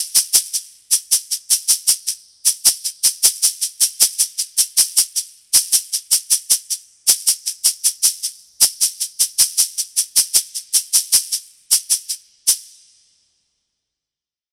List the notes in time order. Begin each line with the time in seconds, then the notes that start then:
0.16 shaker
0.34 shaker
0.54 shaker
0.92 shaker
1.12 shaker
1.32 shaker
1.51 shaker
1.69 shaker
1.88 shaker
2.07 shaker
2.46 shaker
2.66 shaker
2.85 shaker
3.04 shaker
3.24 shaker
3.43 shaker
3.62 shaker
3.81 shaker
4.01 shaker
4.19 shaker
4.39 shaker
4.58 shaker
4.78 shaker
4.97 shaker
5.16 shaker
5.54 shaker
5.73 shaker
5.93 shaker
6.12 shaker
6.31 shaker
6.51 shaker
6.71 shaker
7.08 shaker
7.28 shaker
7.47 shaker
7.65 shaker
7.85 shaker
8.03 shaker
8.23 shaker
8.62 shaker
8.81 shaker
9.01 shaker
9.20 shaker
9.39 shaker
9.58 shaker
9.78 shaker
9.97 shaker
10.17 shaker
10.35 shaker
10.55 shaker
10.74 shaker
10.94 shaker
11.13 shaker
11.32 shaker
11.72 shaker
11.91 shaker
12.10 shaker
12.48 shaker